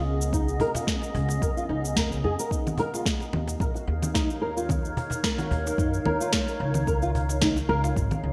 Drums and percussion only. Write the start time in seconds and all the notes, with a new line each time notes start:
0.21 shaker
0.33 kick, shaker
0.48 shaker
0.60 cajon bass
0.75 cajon bass, cajon slap, shaker
0.87 kick, snare, shaker
1.02 cajon slap, shaker
1.15 cajon bass
1.29 cajon slap, shaker
1.42 kick, shaker
1.57 shaker
1.85 shaker
1.97 kick, snare, shaker
2.12 shaker
2.39 shaker
2.51 kick, shaker
2.67 low conga, shaker
2.78 cajon bass
2.94 cajon slap, shaker
3.06 kick, snare, shaker
3.20 cajon slap, shaker
3.33 low conga
3.48 cajon slap, shaker
3.60 kick, shaker
3.74 cajon slap, shaker
4.03 low conga, shaker
4.15 kick, snare, shaker
4.30 shaker
4.57 shaker
4.69 kick, low conga, shaker
4.85 shaker
4.97 cajon bass
5.10 cajon bass, cajon slap, shaker
5.24 kick, snare, shaker
5.38 cajon slap, low conga, shaker
5.51 cajon bass
5.67 cajon slap, shaker
5.78 kick, shaker
5.94 shaker
6.06 low conga
6.21 shaker
6.33 kick, snare, shaker
6.48 shaker
6.74 low conga, shaker
6.87 kick, shaker
7.02 shaker
7.15 cajon bass
7.29 cajon slap, shaker
7.42 kick, snare, low conga, shaker
7.56 cajon slap, shaker
7.84 cajon slap, shaker
7.96 kick, shaker
8.11 cajon slap, low conga, shaker